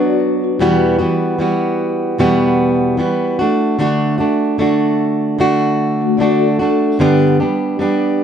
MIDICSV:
0, 0, Header, 1, 3, 480
1, 0, Start_track
1, 0, Key_signature, 1, "minor"
1, 0, Tempo, 798935
1, 356, Time_signature, 4, 2, 24, 8
1, 4949, End_track
2, 0, Start_track
2, 0, Title_t, "Vibraphone"
2, 0, Program_c, 0, 11
2, 18, Note_on_c, 0, 74, 80
2, 24, Note_on_c, 0, 66, 67
2, 110, Note_off_c, 0, 74, 0
2, 113, Note_off_c, 0, 66, 0
2, 118, Note_on_c, 0, 71, 78
2, 121, Note_on_c, 0, 62, 67
2, 254, Note_off_c, 0, 71, 0
2, 255, Note_off_c, 0, 62, 0
2, 263, Note_on_c, 0, 66, 76
2, 489, Note_off_c, 0, 66, 0
2, 3612, Note_on_c, 0, 66, 78
2, 3616, Note_on_c, 0, 57, 64
2, 3704, Note_off_c, 0, 66, 0
2, 3708, Note_off_c, 0, 57, 0
2, 3708, Note_on_c, 0, 74, 91
2, 3711, Note_on_c, 0, 66, 76
2, 3847, Note_off_c, 0, 74, 0
2, 3849, Note_off_c, 0, 66, 0
2, 3851, Note_on_c, 0, 69, 81
2, 4173, Note_off_c, 0, 69, 0
2, 4949, End_track
3, 0, Start_track
3, 0, Title_t, "Steel-string acoustic guitar"
3, 0, Program_c, 1, 25
3, 0, Note_on_c, 1, 54, 59
3, 0, Note_on_c, 1, 59, 63
3, 0, Note_on_c, 1, 62, 67
3, 0, Note_on_c, 1, 66, 64
3, 357, Note_on_c, 1, 40, 90
3, 361, Note_off_c, 1, 54, 0
3, 362, Note_on_c, 1, 47, 78
3, 364, Note_on_c, 1, 52, 82
3, 365, Note_off_c, 1, 59, 0
3, 365, Note_off_c, 1, 62, 0
3, 367, Note_on_c, 1, 55, 94
3, 371, Note_on_c, 1, 59, 91
3, 372, Note_off_c, 1, 66, 0
3, 374, Note_on_c, 1, 66, 98
3, 585, Note_off_c, 1, 66, 0
3, 591, Note_off_c, 1, 59, 0
3, 592, Note_on_c, 1, 66, 55
3, 596, Note_off_c, 1, 40, 0
3, 598, Note_off_c, 1, 55, 0
3, 598, Note_on_c, 1, 59, 50
3, 599, Note_off_c, 1, 47, 0
3, 600, Note_off_c, 1, 52, 0
3, 605, Note_on_c, 1, 55, 49
3, 612, Note_on_c, 1, 52, 46
3, 825, Note_off_c, 1, 52, 0
3, 832, Note_off_c, 1, 55, 0
3, 832, Note_on_c, 1, 52, 63
3, 833, Note_off_c, 1, 66, 0
3, 836, Note_off_c, 1, 59, 0
3, 839, Note_on_c, 1, 55, 74
3, 847, Note_on_c, 1, 59, 68
3, 850, Note_on_c, 1, 66, 74
3, 1311, Note_off_c, 1, 52, 0
3, 1312, Note_on_c, 1, 40, 88
3, 1315, Note_off_c, 1, 55, 0
3, 1317, Note_off_c, 1, 59, 0
3, 1317, Note_on_c, 1, 47, 93
3, 1319, Note_on_c, 1, 52, 99
3, 1321, Note_off_c, 1, 66, 0
3, 1322, Note_on_c, 1, 55, 96
3, 1324, Note_on_c, 1, 59, 98
3, 1324, Note_on_c, 1, 66, 96
3, 1779, Note_off_c, 1, 52, 0
3, 1786, Note_on_c, 1, 52, 68
3, 1787, Note_off_c, 1, 55, 0
3, 1792, Note_off_c, 1, 59, 0
3, 1793, Note_off_c, 1, 40, 0
3, 1794, Note_on_c, 1, 55, 70
3, 1796, Note_off_c, 1, 47, 0
3, 1799, Note_on_c, 1, 59, 67
3, 1802, Note_off_c, 1, 66, 0
3, 1805, Note_on_c, 1, 66, 74
3, 2030, Note_off_c, 1, 52, 0
3, 2030, Note_off_c, 1, 66, 0
3, 2034, Note_off_c, 1, 55, 0
3, 2037, Note_off_c, 1, 59, 0
3, 2037, Note_on_c, 1, 66, 61
3, 2048, Note_on_c, 1, 62, 56
3, 2055, Note_on_c, 1, 57, 54
3, 2272, Note_off_c, 1, 57, 0
3, 2275, Note_on_c, 1, 50, 84
3, 2276, Note_off_c, 1, 66, 0
3, 2277, Note_off_c, 1, 62, 0
3, 2279, Note_on_c, 1, 57, 91
3, 2284, Note_on_c, 1, 62, 100
3, 2291, Note_on_c, 1, 66, 92
3, 2504, Note_off_c, 1, 66, 0
3, 2511, Note_on_c, 1, 66, 55
3, 2514, Note_off_c, 1, 50, 0
3, 2516, Note_off_c, 1, 62, 0
3, 2517, Note_off_c, 1, 57, 0
3, 2524, Note_on_c, 1, 62, 50
3, 2530, Note_on_c, 1, 57, 50
3, 2751, Note_off_c, 1, 57, 0
3, 2752, Note_off_c, 1, 66, 0
3, 2753, Note_on_c, 1, 50, 72
3, 2759, Note_off_c, 1, 62, 0
3, 2759, Note_on_c, 1, 57, 72
3, 2767, Note_on_c, 1, 62, 79
3, 2773, Note_on_c, 1, 66, 73
3, 3233, Note_off_c, 1, 50, 0
3, 3235, Note_on_c, 1, 50, 89
3, 3236, Note_off_c, 1, 57, 0
3, 3242, Note_off_c, 1, 66, 0
3, 3243, Note_on_c, 1, 57, 91
3, 3245, Note_off_c, 1, 62, 0
3, 3248, Note_on_c, 1, 62, 95
3, 3249, Note_on_c, 1, 66, 105
3, 3713, Note_off_c, 1, 50, 0
3, 3716, Note_on_c, 1, 50, 72
3, 3718, Note_off_c, 1, 57, 0
3, 3721, Note_off_c, 1, 66, 0
3, 3726, Note_on_c, 1, 57, 73
3, 3729, Note_off_c, 1, 62, 0
3, 3731, Note_on_c, 1, 62, 68
3, 3734, Note_on_c, 1, 66, 69
3, 3954, Note_off_c, 1, 50, 0
3, 3954, Note_off_c, 1, 66, 0
3, 3959, Note_off_c, 1, 57, 0
3, 3961, Note_on_c, 1, 66, 62
3, 3962, Note_off_c, 1, 62, 0
3, 3972, Note_on_c, 1, 62, 52
3, 3980, Note_on_c, 1, 57, 50
3, 4197, Note_off_c, 1, 66, 0
3, 4199, Note_on_c, 1, 43, 91
3, 4202, Note_off_c, 1, 62, 0
3, 4205, Note_on_c, 1, 50, 96
3, 4206, Note_off_c, 1, 57, 0
3, 4210, Note_on_c, 1, 55, 89
3, 4212, Note_on_c, 1, 59, 92
3, 4213, Note_on_c, 1, 62, 95
3, 4214, Note_on_c, 1, 67, 93
3, 4436, Note_off_c, 1, 43, 0
3, 4438, Note_off_c, 1, 67, 0
3, 4439, Note_off_c, 1, 50, 0
3, 4441, Note_off_c, 1, 55, 0
3, 4442, Note_off_c, 1, 59, 0
3, 4443, Note_off_c, 1, 62, 0
3, 4445, Note_on_c, 1, 67, 55
3, 4449, Note_on_c, 1, 62, 54
3, 4457, Note_on_c, 1, 59, 52
3, 4464, Note_on_c, 1, 55, 45
3, 4674, Note_off_c, 1, 55, 0
3, 4679, Note_off_c, 1, 67, 0
3, 4681, Note_off_c, 1, 59, 0
3, 4681, Note_off_c, 1, 62, 0
3, 4681, Note_on_c, 1, 55, 72
3, 4688, Note_on_c, 1, 59, 67
3, 4695, Note_on_c, 1, 62, 83
3, 4702, Note_on_c, 1, 67, 77
3, 4949, Note_off_c, 1, 55, 0
3, 4949, Note_off_c, 1, 59, 0
3, 4949, Note_off_c, 1, 62, 0
3, 4949, Note_off_c, 1, 67, 0
3, 4949, End_track
0, 0, End_of_file